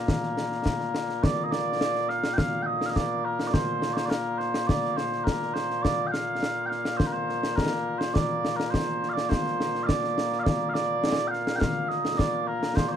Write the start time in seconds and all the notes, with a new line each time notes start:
Already playing: A#2 A#3 A#4
0.08 concert bass drum, snare
0.23 snare
0.37 snare
0.52 snare
0.66 concert bass drum, snare
0.80 snare
0.95 snare
1.09 snare
1.23 D5, concert bass drum, snare
1.44 D#5
1.51 D5, snare
1.81 snare
1.95 snare
2.09 F5, snare
2.24 snare
2.34 F5 G5
2.38 concert bass drum, snare
2.62 D#5 G5
2.81 snare
2.86 D#5 F5
2.96 D5, concert bass drum, snare
3.25 A#4
3.40 snare
3.47 D5
3.53 C5, concert bass drum, snare
3.82 snare
3.93 C5 D5, snare
4.05 D5
4.10 A#4, snare
4.38 C5, snare
4.54 snare
4.67 D5, concert bass drum, snare
4.84 snare
4.97 C5, snare
5.12 snare
5.24 A#4, concert bass drum, snare
5.42 snare
5.54 C5, snare
5.70 snare
5.82 D5, concert bass drum, snare
6.07 G5
6.12 F5, snare
6.43 snare
6.66 F5 G5
6.72 snare
6.85 snare
6.97 C5, concert bass drum, snare
7.07 A#4
7.13 C5
7.29 snare
7.43 snare
7.56 A#4, concert bass drum, snare
7.98 C5, snare
8.14 D5, concert bass drum, snare
8.45 snare
8.56 A#4, snare
8.70 C5, concert bass drum, snare
9.03 snare
9.09 D5 F5
9.17 snare
9.29 C5, concert bass drum, snare
9.46 snare
9.60 snare
9.75 snare
9.83 D5 F5
9.89 concert bass drum, snare
10.04 snare
10.18 snare
10.32 snare
10.40 D5 F5
10.46 concert bass drum, snare
10.69 F5
10.74 D5, snare
11.04 snare
11.19 snare
11.28 F5 G5
11.33 snare
11.47 snare
11.56 F5 G5
11.61 concert bass drum, snare
11.89 D#5, snare
12.05 snare
12.18 D5, concert bass drum, snare
12.47 A#4
12.63 snare
12.76 C5, concert bass drum, snare
12.88 C5 D5